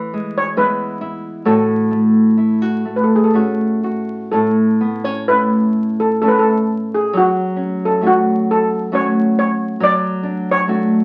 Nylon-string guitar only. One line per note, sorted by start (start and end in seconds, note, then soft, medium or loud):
0.00 2.65 E3 medium
0.00 0.57 E4 medium
0.14 0.56 G#3 medium
0.57 1.53 G#3 medium
0.57 1.54 B3 medium
0.57 1.01 E4 medium
1.01 1.46 E4 medium
1.45 4.31 A2 medium
1.45 2.36 F#4 medium
1.91 2.85 A3 soft
2.37 2.62 E4 soft
2.62 3.34 F#4 soft
2.85 3.33 A3 soft
3.33 4.84 A3 soft
3.33 4.80 C#4 soft
3.33 3.83 F#4 soft
3.84 4.41 F#4 soft
4.33 7.13 A2 medium
4.81 5.05 B3 soft
5.05 5.28 C#4 soft
5.29 6.22 A3 soft
5.29 6.22 C#4 soft
5.29 6.22 E4 medium
6.22 8.01 A3 soft
6.22 7.56 C#4 soft
6.22 7.21 E4 medium
7.13 9.80 F#3 medium
7.56 8.01 C#4 medium
8.01 8.91 A3 soft
8.01 8.91 C#4 soft
8.01 8.93 F#4 medium
8.92 10.67 A3 medium
8.92 9.90 C#4 medium
8.92 10.69 F#4 medium
9.80 11.04 F#3 medium
10.23 10.67 D4 medium
10.67 11.04 A3 medium
10.67 11.04 D4 soft
10.67 11.04 F#4 medium